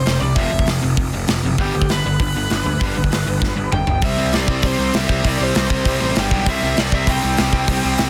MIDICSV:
0, 0, Header, 1, 5, 480
1, 0, Start_track
1, 0, Tempo, 304878
1, 583, Time_signature, 4, 2, 24, 8
1, 12746, End_track
2, 0, Start_track
2, 0, Title_t, "Lead electric guitar"
2, 0, Program_c, 0, 29
2, 0, Note_on_c, 0, 72, 99
2, 322, Note_off_c, 0, 72, 0
2, 329, Note_on_c, 0, 74, 101
2, 559, Note_on_c, 0, 76, 99
2, 583, Note_off_c, 0, 74, 0
2, 1017, Note_off_c, 0, 76, 0
2, 2526, Note_on_c, 0, 67, 95
2, 2962, Note_off_c, 0, 67, 0
2, 3009, Note_on_c, 0, 71, 100
2, 3450, Note_off_c, 0, 71, 0
2, 3469, Note_on_c, 0, 71, 104
2, 5804, Note_off_c, 0, 71, 0
2, 5869, Note_on_c, 0, 79, 110
2, 6313, Note_off_c, 0, 79, 0
2, 6359, Note_on_c, 0, 76, 100
2, 6798, Note_off_c, 0, 76, 0
2, 6836, Note_on_c, 0, 74, 89
2, 7324, Note_off_c, 0, 74, 0
2, 7334, Note_on_c, 0, 72, 105
2, 7767, Note_off_c, 0, 72, 0
2, 7820, Note_on_c, 0, 76, 95
2, 8250, Note_off_c, 0, 76, 0
2, 8299, Note_on_c, 0, 74, 96
2, 8547, Note_off_c, 0, 74, 0
2, 8547, Note_on_c, 0, 72, 84
2, 9747, Note_on_c, 0, 79, 103
2, 9761, Note_off_c, 0, 72, 0
2, 10173, Note_off_c, 0, 79, 0
2, 10225, Note_on_c, 0, 76, 102
2, 10652, Note_off_c, 0, 76, 0
2, 10698, Note_on_c, 0, 74, 85
2, 10927, Note_off_c, 0, 74, 0
2, 10938, Note_on_c, 0, 76, 100
2, 11145, Note_off_c, 0, 76, 0
2, 11177, Note_on_c, 0, 79, 101
2, 12746, Note_off_c, 0, 79, 0
2, 12746, End_track
3, 0, Start_track
3, 0, Title_t, "Overdriven electric guitar"
3, 0, Program_c, 1, 29
3, 94, Note_on_c, 1, 41, 78
3, 102, Note_on_c, 1, 48, 83
3, 314, Note_off_c, 1, 41, 0
3, 319, Note_off_c, 1, 48, 0
3, 334, Note_on_c, 1, 41, 65
3, 344, Note_on_c, 1, 48, 80
3, 555, Note_off_c, 1, 41, 0
3, 559, Note_off_c, 1, 48, 0
3, 575, Note_on_c, 1, 41, 90
3, 583, Note_on_c, 1, 48, 90
3, 592, Note_on_c, 1, 53, 94
3, 785, Note_off_c, 1, 41, 0
3, 802, Note_off_c, 1, 48, 0
3, 804, Note_on_c, 1, 41, 69
3, 813, Note_off_c, 1, 53, 0
3, 820, Note_on_c, 1, 48, 80
3, 1030, Note_off_c, 1, 41, 0
3, 1038, Note_off_c, 1, 48, 0
3, 1060, Note_on_c, 1, 41, 67
3, 1070, Note_on_c, 1, 48, 73
3, 1278, Note_off_c, 1, 41, 0
3, 1283, Note_off_c, 1, 48, 0
3, 1300, Note_on_c, 1, 48, 80
3, 1302, Note_on_c, 1, 41, 65
3, 1518, Note_off_c, 1, 48, 0
3, 1519, Note_off_c, 1, 41, 0
3, 1537, Note_on_c, 1, 41, 70
3, 1549, Note_on_c, 1, 48, 76
3, 1756, Note_off_c, 1, 41, 0
3, 1762, Note_off_c, 1, 48, 0
3, 1790, Note_on_c, 1, 41, 73
3, 1798, Note_on_c, 1, 48, 85
3, 2003, Note_off_c, 1, 41, 0
3, 2007, Note_off_c, 1, 48, 0
3, 2025, Note_on_c, 1, 41, 76
3, 2025, Note_on_c, 1, 48, 83
3, 2240, Note_off_c, 1, 41, 0
3, 2240, Note_off_c, 1, 48, 0
3, 2286, Note_on_c, 1, 41, 67
3, 2291, Note_on_c, 1, 48, 78
3, 2491, Note_off_c, 1, 41, 0
3, 2493, Note_off_c, 1, 48, 0
3, 2516, Note_on_c, 1, 43, 98
3, 2524, Note_on_c, 1, 50, 99
3, 2532, Note_on_c, 1, 55, 102
3, 2735, Note_off_c, 1, 43, 0
3, 2740, Note_off_c, 1, 50, 0
3, 2743, Note_off_c, 1, 55, 0
3, 2759, Note_on_c, 1, 50, 75
3, 2762, Note_on_c, 1, 43, 74
3, 2967, Note_off_c, 1, 50, 0
3, 2969, Note_off_c, 1, 43, 0
3, 2990, Note_on_c, 1, 43, 75
3, 3000, Note_on_c, 1, 50, 82
3, 3203, Note_off_c, 1, 43, 0
3, 3208, Note_off_c, 1, 50, 0
3, 3241, Note_on_c, 1, 43, 66
3, 3249, Note_on_c, 1, 50, 73
3, 3449, Note_off_c, 1, 43, 0
3, 3453, Note_off_c, 1, 50, 0
3, 3484, Note_on_c, 1, 43, 77
3, 3489, Note_on_c, 1, 50, 75
3, 3690, Note_off_c, 1, 43, 0
3, 3692, Note_off_c, 1, 50, 0
3, 3718, Note_on_c, 1, 43, 72
3, 3722, Note_on_c, 1, 50, 74
3, 3927, Note_off_c, 1, 43, 0
3, 3929, Note_off_c, 1, 50, 0
3, 3961, Note_on_c, 1, 43, 75
3, 3970, Note_on_c, 1, 50, 84
3, 4168, Note_off_c, 1, 43, 0
3, 4173, Note_off_c, 1, 50, 0
3, 4185, Note_on_c, 1, 43, 67
3, 4189, Note_on_c, 1, 50, 75
3, 4400, Note_off_c, 1, 43, 0
3, 4402, Note_off_c, 1, 50, 0
3, 4427, Note_on_c, 1, 43, 88
3, 4429, Note_on_c, 1, 50, 98
3, 4439, Note_on_c, 1, 55, 105
3, 4651, Note_off_c, 1, 43, 0
3, 4652, Note_off_c, 1, 50, 0
3, 4657, Note_off_c, 1, 55, 0
3, 4672, Note_on_c, 1, 43, 65
3, 4684, Note_on_c, 1, 50, 79
3, 4884, Note_off_c, 1, 43, 0
3, 4890, Note_off_c, 1, 50, 0
3, 4904, Note_on_c, 1, 43, 72
3, 4907, Note_on_c, 1, 50, 84
3, 5120, Note_off_c, 1, 43, 0
3, 5122, Note_off_c, 1, 50, 0
3, 5144, Note_on_c, 1, 43, 73
3, 5158, Note_on_c, 1, 50, 74
3, 5360, Note_off_c, 1, 43, 0
3, 5367, Note_off_c, 1, 50, 0
3, 5392, Note_on_c, 1, 43, 69
3, 5395, Note_on_c, 1, 50, 78
3, 5594, Note_off_c, 1, 43, 0
3, 5602, Note_off_c, 1, 50, 0
3, 5613, Note_on_c, 1, 43, 74
3, 5620, Note_on_c, 1, 50, 83
3, 5835, Note_off_c, 1, 43, 0
3, 5838, Note_off_c, 1, 50, 0
3, 5855, Note_on_c, 1, 43, 73
3, 5865, Note_on_c, 1, 50, 75
3, 6076, Note_off_c, 1, 43, 0
3, 6081, Note_off_c, 1, 50, 0
3, 6098, Note_on_c, 1, 43, 68
3, 6098, Note_on_c, 1, 50, 79
3, 6317, Note_off_c, 1, 43, 0
3, 6317, Note_off_c, 1, 50, 0
3, 6331, Note_on_c, 1, 48, 93
3, 6334, Note_on_c, 1, 55, 105
3, 6341, Note_on_c, 1, 60, 104
3, 6558, Note_off_c, 1, 60, 0
3, 6569, Note_off_c, 1, 48, 0
3, 6576, Note_off_c, 1, 55, 0
3, 6577, Note_on_c, 1, 60, 95
3, 6582, Note_on_c, 1, 55, 79
3, 6588, Note_on_c, 1, 48, 72
3, 6792, Note_off_c, 1, 48, 0
3, 6806, Note_off_c, 1, 60, 0
3, 6809, Note_off_c, 1, 55, 0
3, 6811, Note_on_c, 1, 48, 96
3, 6816, Note_on_c, 1, 55, 88
3, 6825, Note_on_c, 1, 60, 99
3, 7042, Note_off_c, 1, 60, 0
3, 7057, Note_off_c, 1, 48, 0
3, 7061, Note_on_c, 1, 60, 86
3, 7062, Note_off_c, 1, 55, 0
3, 7068, Note_on_c, 1, 55, 81
3, 7076, Note_on_c, 1, 48, 74
3, 7272, Note_off_c, 1, 48, 0
3, 7285, Note_off_c, 1, 60, 0
3, 7290, Note_on_c, 1, 48, 86
3, 7294, Note_off_c, 1, 55, 0
3, 7300, Note_on_c, 1, 55, 94
3, 7303, Note_on_c, 1, 60, 104
3, 7508, Note_off_c, 1, 60, 0
3, 7527, Note_on_c, 1, 60, 103
3, 7529, Note_off_c, 1, 48, 0
3, 7532, Note_off_c, 1, 55, 0
3, 7539, Note_on_c, 1, 55, 82
3, 7548, Note_on_c, 1, 48, 72
3, 7741, Note_off_c, 1, 48, 0
3, 7760, Note_on_c, 1, 48, 93
3, 7761, Note_off_c, 1, 60, 0
3, 7768, Note_off_c, 1, 55, 0
3, 7775, Note_on_c, 1, 55, 99
3, 7780, Note_on_c, 1, 60, 99
3, 7994, Note_off_c, 1, 60, 0
3, 8000, Note_off_c, 1, 48, 0
3, 8013, Note_off_c, 1, 55, 0
3, 8013, Note_on_c, 1, 60, 88
3, 8019, Note_on_c, 1, 48, 78
3, 8020, Note_on_c, 1, 55, 86
3, 8232, Note_off_c, 1, 48, 0
3, 8247, Note_off_c, 1, 60, 0
3, 8250, Note_on_c, 1, 48, 101
3, 8254, Note_off_c, 1, 55, 0
3, 8260, Note_on_c, 1, 55, 98
3, 8266, Note_on_c, 1, 60, 113
3, 8474, Note_off_c, 1, 60, 0
3, 8491, Note_off_c, 1, 48, 0
3, 8493, Note_on_c, 1, 60, 96
3, 8500, Note_off_c, 1, 55, 0
3, 8506, Note_on_c, 1, 55, 83
3, 8510, Note_on_c, 1, 48, 72
3, 8708, Note_off_c, 1, 48, 0
3, 8715, Note_off_c, 1, 60, 0
3, 8727, Note_on_c, 1, 48, 94
3, 8734, Note_off_c, 1, 55, 0
3, 8734, Note_on_c, 1, 60, 100
3, 8740, Note_on_c, 1, 55, 95
3, 8952, Note_off_c, 1, 60, 0
3, 8969, Note_off_c, 1, 48, 0
3, 8971, Note_on_c, 1, 60, 89
3, 8973, Note_off_c, 1, 55, 0
3, 8980, Note_on_c, 1, 55, 76
3, 8988, Note_on_c, 1, 48, 75
3, 9209, Note_off_c, 1, 48, 0
3, 9223, Note_off_c, 1, 60, 0
3, 9228, Note_off_c, 1, 55, 0
3, 9228, Note_on_c, 1, 48, 99
3, 9235, Note_on_c, 1, 55, 100
3, 9242, Note_on_c, 1, 60, 110
3, 9431, Note_off_c, 1, 60, 0
3, 9440, Note_off_c, 1, 48, 0
3, 9449, Note_off_c, 1, 55, 0
3, 9450, Note_on_c, 1, 60, 95
3, 9456, Note_on_c, 1, 55, 92
3, 9459, Note_on_c, 1, 48, 79
3, 9683, Note_off_c, 1, 60, 0
3, 9687, Note_off_c, 1, 48, 0
3, 9692, Note_on_c, 1, 43, 102
3, 9693, Note_on_c, 1, 50, 95
3, 9694, Note_off_c, 1, 55, 0
3, 9700, Note_on_c, 1, 55, 101
3, 9919, Note_off_c, 1, 50, 0
3, 9921, Note_off_c, 1, 43, 0
3, 9927, Note_off_c, 1, 55, 0
3, 9933, Note_on_c, 1, 55, 86
3, 9938, Note_on_c, 1, 50, 88
3, 9940, Note_on_c, 1, 43, 77
3, 10166, Note_off_c, 1, 50, 0
3, 10167, Note_off_c, 1, 43, 0
3, 10172, Note_on_c, 1, 48, 101
3, 10184, Note_off_c, 1, 55, 0
3, 10190, Note_on_c, 1, 55, 102
3, 10199, Note_on_c, 1, 60, 106
3, 10411, Note_off_c, 1, 60, 0
3, 10426, Note_off_c, 1, 48, 0
3, 10430, Note_on_c, 1, 60, 88
3, 10439, Note_off_c, 1, 55, 0
3, 10445, Note_on_c, 1, 48, 75
3, 10445, Note_on_c, 1, 55, 92
3, 10642, Note_off_c, 1, 48, 0
3, 10660, Note_off_c, 1, 60, 0
3, 10661, Note_on_c, 1, 48, 99
3, 10662, Note_off_c, 1, 55, 0
3, 10669, Note_on_c, 1, 55, 97
3, 10679, Note_on_c, 1, 60, 103
3, 10896, Note_off_c, 1, 60, 0
3, 10910, Note_off_c, 1, 48, 0
3, 10913, Note_off_c, 1, 55, 0
3, 10915, Note_on_c, 1, 60, 94
3, 10919, Note_on_c, 1, 55, 89
3, 10929, Note_on_c, 1, 48, 79
3, 11127, Note_off_c, 1, 48, 0
3, 11146, Note_on_c, 1, 48, 90
3, 11147, Note_off_c, 1, 60, 0
3, 11149, Note_off_c, 1, 55, 0
3, 11156, Note_on_c, 1, 55, 96
3, 11165, Note_on_c, 1, 60, 114
3, 11366, Note_off_c, 1, 60, 0
3, 11376, Note_off_c, 1, 48, 0
3, 11384, Note_off_c, 1, 55, 0
3, 11385, Note_on_c, 1, 60, 94
3, 11390, Note_on_c, 1, 55, 86
3, 11395, Note_on_c, 1, 48, 78
3, 11597, Note_off_c, 1, 48, 0
3, 11608, Note_off_c, 1, 60, 0
3, 11615, Note_on_c, 1, 48, 105
3, 11617, Note_off_c, 1, 55, 0
3, 11624, Note_on_c, 1, 55, 110
3, 11627, Note_on_c, 1, 60, 102
3, 11841, Note_off_c, 1, 60, 0
3, 11852, Note_off_c, 1, 48, 0
3, 11860, Note_on_c, 1, 60, 102
3, 11861, Note_off_c, 1, 55, 0
3, 11867, Note_on_c, 1, 55, 76
3, 11871, Note_on_c, 1, 48, 74
3, 12078, Note_off_c, 1, 48, 0
3, 12086, Note_off_c, 1, 55, 0
3, 12090, Note_off_c, 1, 60, 0
3, 12097, Note_on_c, 1, 48, 105
3, 12104, Note_on_c, 1, 55, 115
3, 12109, Note_on_c, 1, 60, 117
3, 12318, Note_off_c, 1, 60, 0
3, 12322, Note_off_c, 1, 55, 0
3, 12336, Note_off_c, 1, 48, 0
3, 12337, Note_on_c, 1, 60, 90
3, 12341, Note_on_c, 1, 55, 89
3, 12354, Note_on_c, 1, 48, 76
3, 12558, Note_off_c, 1, 48, 0
3, 12569, Note_off_c, 1, 55, 0
3, 12571, Note_off_c, 1, 60, 0
3, 12577, Note_on_c, 1, 48, 94
3, 12588, Note_on_c, 1, 55, 89
3, 12590, Note_on_c, 1, 60, 102
3, 12746, Note_off_c, 1, 48, 0
3, 12746, Note_off_c, 1, 55, 0
3, 12746, Note_off_c, 1, 60, 0
3, 12746, End_track
4, 0, Start_track
4, 0, Title_t, "Picked electric bass"
4, 0, Program_c, 2, 34
4, 94, Note_on_c, 2, 29, 83
4, 257, Note_off_c, 2, 29, 0
4, 332, Note_on_c, 2, 36, 85
4, 495, Note_off_c, 2, 36, 0
4, 566, Note_on_c, 2, 29, 93
4, 732, Note_off_c, 2, 29, 0
4, 819, Note_on_c, 2, 29, 86
4, 981, Note_off_c, 2, 29, 0
4, 1060, Note_on_c, 2, 29, 89
4, 1221, Note_off_c, 2, 29, 0
4, 1300, Note_on_c, 2, 29, 84
4, 1461, Note_off_c, 2, 29, 0
4, 1534, Note_on_c, 2, 29, 89
4, 1697, Note_off_c, 2, 29, 0
4, 1795, Note_on_c, 2, 29, 90
4, 1951, Note_off_c, 2, 29, 0
4, 2022, Note_on_c, 2, 29, 88
4, 2183, Note_off_c, 2, 29, 0
4, 2256, Note_on_c, 2, 30, 86
4, 2419, Note_off_c, 2, 30, 0
4, 2492, Note_on_c, 2, 31, 97
4, 2656, Note_off_c, 2, 31, 0
4, 2749, Note_on_c, 2, 38, 92
4, 2907, Note_off_c, 2, 38, 0
4, 2985, Note_on_c, 2, 31, 89
4, 3144, Note_off_c, 2, 31, 0
4, 3231, Note_on_c, 2, 31, 86
4, 3389, Note_off_c, 2, 31, 0
4, 3455, Note_on_c, 2, 31, 95
4, 3618, Note_off_c, 2, 31, 0
4, 3725, Note_on_c, 2, 31, 80
4, 3878, Note_off_c, 2, 31, 0
4, 3948, Note_on_c, 2, 31, 89
4, 4106, Note_off_c, 2, 31, 0
4, 4190, Note_on_c, 2, 38, 90
4, 4348, Note_off_c, 2, 38, 0
4, 4424, Note_on_c, 2, 31, 92
4, 4584, Note_off_c, 2, 31, 0
4, 4681, Note_on_c, 2, 31, 88
4, 4835, Note_off_c, 2, 31, 0
4, 4908, Note_on_c, 2, 31, 94
4, 5067, Note_off_c, 2, 31, 0
4, 5142, Note_on_c, 2, 31, 87
4, 5302, Note_off_c, 2, 31, 0
4, 5382, Note_on_c, 2, 31, 95
4, 5543, Note_off_c, 2, 31, 0
4, 5620, Note_on_c, 2, 31, 89
4, 5781, Note_off_c, 2, 31, 0
4, 5873, Note_on_c, 2, 31, 89
4, 6030, Note_off_c, 2, 31, 0
4, 6115, Note_on_c, 2, 31, 93
4, 6272, Note_off_c, 2, 31, 0
4, 6333, Note_on_c, 2, 36, 92
4, 6510, Note_off_c, 2, 36, 0
4, 6582, Note_on_c, 2, 36, 84
4, 6756, Note_off_c, 2, 36, 0
4, 6822, Note_on_c, 2, 36, 86
4, 6996, Note_off_c, 2, 36, 0
4, 7051, Note_on_c, 2, 36, 89
4, 7228, Note_off_c, 2, 36, 0
4, 7291, Note_on_c, 2, 36, 96
4, 7469, Note_off_c, 2, 36, 0
4, 7529, Note_on_c, 2, 36, 82
4, 7707, Note_off_c, 2, 36, 0
4, 7777, Note_on_c, 2, 36, 89
4, 7952, Note_off_c, 2, 36, 0
4, 8020, Note_on_c, 2, 36, 94
4, 8194, Note_off_c, 2, 36, 0
4, 8261, Note_on_c, 2, 36, 94
4, 8435, Note_off_c, 2, 36, 0
4, 8497, Note_on_c, 2, 36, 86
4, 8672, Note_off_c, 2, 36, 0
4, 8748, Note_on_c, 2, 36, 91
4, 8920, Note_off_c, 2, 36, 0
4, 8973, Note_on_c, 2, 36, 84
4, 9149, Note_off_c, 2, 36, 0
4, 9215, Note_on_c, 2, 36, 98
4, 9391, Note_off_c, 2, 36, 0
4, 9474, Note_on_c, 2, 33, 87
4, 9643, Note_off_c, 2, 33, 0
4, 9714, Note_on_c, 2, 31, 98
4, 9883, Note_off_c, 2, 31, 0
4, 9937, Note_on_c, 2, 35, 88
4, 10112, Note_off_c, 2, 35, 0
4, 10173, Note_on_c, 2, 36, 96
4, 10349, Note_off_c, 2, 36, 0
4, 10432, Note_on_c, 2, 36, 93
4, 10601, Note_off_c, 2, 36, 0
4, 10679, Note_on_c, 2, 36, 93
4, 10846, Note_off_c, 2, 36, 0
4, 10895, Note_on_c, 2, 36, 85
4, 11071, Note_off_c, 2, 36, 0
4, 11132, Note_on_c, 2, 36, 103
4, 11309, Note_off_c, 2, 36, 0
4, 11401, Note_on_c, 2, 36, 92
4, 11567, Note_off_c, 2, 36, 0
4, 11644, Note_on_c, 2, 36, 98
4, 11809, Note_off_c, 2, 36, 0
4, 11849, Note_on_c, 2, 36, 94
4, 12026, Note_off_c, 2, 36, 0
4, 12087, Note_on_c, 2, 36, 99
4, 12265, Note_off_c, 2, 36, 0
4, 12357, Note_on_c, 2, 36, 88
4, 12524, Note_off_c, 2, 36, 0
4, 12576, Note_on_c, 2, 36, 96
4, 12746, Note_off_c, 2, 36, 0
4, 12746, End_track
5, 0, Start_track
5, 0, Title_t, "Drums"
5, 92, Note_on_c, 9, 46, 61
5, 111, Note_on_c, 9, 38, 113
5, 250, Note_off_c, 9, 46, 0
5, 268, Note_off_c, 9, 38, 0
5, 564, Note_on_c, 9, 46, 60
5, 567, Note_on_c, 9, 36, 108
5, 722, Note_off_c, 9, 46, 0
5, 724, Note_off_c, 9, 36, 0
5, 929, Note_on_c, 9, 36, 93
5, 1048, Note_on_c, 9, 46, 56
5, 1067, Note_on_c, 9, 38, 114
5, 1087, Note_off_c, 9, 36, 0
5, 1206, Note_off_c, 9, 46, 0
5, 1225, Note_off_c, 9, 38, 0
5, 1531, Note_on_c, 9, 36, 118
5, 1689, Note_off_c, 9, 36, 0
5, 2008, Note_on_c, 9, 46, 58
5, 2027, Note_on_c, 9, 38, 116
5, 2166, Note_off_c, 9, 46, 0
5, 2184, Note_off_c, 9, 38, 0
5, 2493, Note_on_c, 9, 36, 107
5, 2651, Note_off_c, 9, 36, 0
5, 2858, Note_on_c, 9, 36, 95
5, 2973, Note_on_c, 9, 46, 58
5, 2992, Note_on_c, 9, 38, 116
5, 3016, Note_off_c, 9, 36, 0
5, 3130, Note_off_c, 9, 46, 0
5, 3149, Note_off_c, 9, 38, 0
5, 3456, Note_on_c, 9, 46, 61
5, 3460, Note_on_c, 9, 36, 120
5, 3614, Note_off_c, 9, 46, 0
5, 3617, Note_off_c, 9, 36, 0
5, 3939, Note_on_c, 9, 46, 60
5, 3958, Note_on_c, 9, 38, 105
5, 4096, Note_off_c, 9, 46, 0
5, 4115, Note_off_c, 9, 38, 0
5, 4423, Note_on_c, 9, 36, 111
5, 4581, Note_off_c, 9, 36, 0
5, 4785, Note_on_c, 9, 36, 89
5, 4907, Note_on_c, 9, 46, 59
5, 4926, Note_on_c, 9, 38, 117
5, 4943, Note_off_c, 9, 36, 0
5, 5064, Note_off_c, 9, 46, 0
5, 5083, Note_off_c, 9, 38, 0
5, 5381, Note_on_c, 9, 36, 113
5, 5402, Note_on_c, 9, 38, 67
5, 5538, Note_off_c, 9, 36, 0
5, 5560, Note_off_c, 9, 38, 0
5, 5863, Note_on_c, 9, 45, 91
5, 6020, Note_off_c, 9, 45, 0
5, 6095, Note_on_c, 9, 43, 85
5, 6252, Note_off_c, 9, 43, 0
5, 6325, Note_on_c, 9, 46, 63
5, 6333, Note_on_c, 9, 36, 112
5, 6482, Note_off_c, 9, 46, 0
5, 6491, Note_off_c, 9, 36, 0
5, 6814, Note_on_c, 9, 46, 63
5, 6833, Note_on_c, 9, 38, 110
5, 6972, Note_off_c, 9, 46, 0
5, 6991, Note_off_c, 9, 38, 0
5, 7053, Note_on_c, 9, 36, 85
5, 7210, Note_off_c, 9, 36, 0
5, 7278, Note_on_c, 9, 46, 68
5, 7291, Note_on_c, 9, 36, 97
5, 7435, Note_off_c, 9, 46, 0
5, 7449, Note_off_c, 9, 36, 0
5, 7772, Note_on_c, 9, 46, 59
5, 7791, Note_on_c, 9, 38, 116
5, 7929, Note_off_c, 9, 46, 0
5, 7948, Note_off_c, 9, 38, 0
5, 8017, Note_on_c, 9, 36, 84
5, 8175, Note_off_c, 9, 36, 0
5, 8259, Note_on_c, 9, 36, 99
5, 8259, Note_on_c, 9, 46, 60
5, 8416, Note_off_c, 9, 46, 0
5, 8417, Note_off_c, 9, 36, 0
5, 8735, Note_on_c, 9, 46, 60
5, 8754, Note_on_c, 9, 38, 111
5, 8893, Note_off_c, 9, 46, 0
5, 8911, Note_off_c, 9, 38, 0
5, 8978, Note_on_c, 9, 36, 89
5, 9135, Note_off_c, 9, 36, 0
5, 9214, Note_on_c, 9, 46, 61
5, 9217, Note_on_c, 9, 36, 100
5, 9371, Note_off_c, 9, 46, 0
5, 9375, Note_off_c, 9, 36, 0
5, 9692, Note_on_c, 9, 46, 57
5, 9710, Note_on_c, 9, 38, 108
5, 9849, Note_off_c, 9, 46, 0
5, 9868, Note_off_c, 9, 38, 0
5, 9938, Note_on_c, 9, 36, 86
5, 10096, Note_off_c, 9, 36, 0
5, 10173, Note_on_c, 9, 46, 59
5, 10178, Note_on_c, 9, 36, 104
5, 10331, Note_off_c, 9, 46, 0
5, 10335, Note_off_c, 9, 36, 0
5, 10655, Note_on_c, 9, 46, 60
5, 10674, Note_on_c, 9, 38, 119
5, 10813, Note_off_c, 9, 46, 0
5, 10831, Note_off_c, 9, 38, 0
5, 10898, Note_on_c, 9, 36, 86
5, 11056, Note_off_c, 9, 36, 0
5, 11130, Note_on_c, 9, 46, 68
5, 11134, Note_on_c, 9, 36, 107
5, 11288, Note_off_c, 9, 46, 0
5, 11291, Note_off_c, 9, 36, 0
5, 11607, Note_on_c, 9, 46, 63
5, 11626, Note_on_c, 9, 38, 109
5, 11765, Note_off_c, 9, 46, 0
5, 11784, Note_off_c, 9, 38, 0
5, 11850, Note_on_c, 9, 36, 88
5, 12007, Note_off_c, 9, 36, 0
5, 12089, Note_on_c, 9, 46, 62
5, 12091, Note_on_c, 9, 36, 93
5, 12246, Note_off_c, 9, 46, 0
5, 12249, Note_off_c, 9, 36, 0
5, 12562, Note_on_c, 9, 46, 60
5, 12581, Note_on_c, 9, 38, 108
5, 12720, Note_off_c, 9, 46, 0
5, 12738, Note_off_c, 9, 38, 0
5, 12746, End_track
0, 0, End_of_file